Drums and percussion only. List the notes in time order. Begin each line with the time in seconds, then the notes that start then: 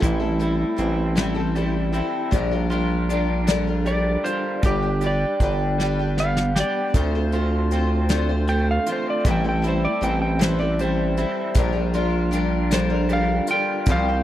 0.02 kick, closed hi-hat
0.40 closed hi-hat
0.78 closed hi-hat
1.17 snare, closed hi-hat
1.56 closed hi-hat
1.94 closed hi-hat
2.32 kick, closed hi-hat
2.71 closed hi-hat
3.10 closed hi-hat
3.47 snare, closed hi-hat
3.86 closed hi-hat
4.25 closed hi-hat
4.63 kick, closed hi-hat
5.01 closed hi-hat
5.40 kick, closed hi-hat
5.80 snare
6.18 snare
6.37 snare
6.56 snare
6.94 kick, closed hi-hat
7.32 closed hi-hat
7.71 closed hi-hat
8.09 snare, closed hi-hat
8.47 closed hi-hat
8.86 closed hi-hat
9.25 kick, closed hi-hat
9.64 closed hi-hat
10.02 closed hi-hat
10.41 snare, closed hi-hat
10.79 closed hi-hat
11.17 closed hi-hat
11.54 kick, closed hi-hat
11.94 closed hi-hat
12.32 closed hi-hat
12.71 snare, closed hi-hat
13.09 closed hi-hat
13.47 closed hi-hat
13.86 kick, closed hi-hat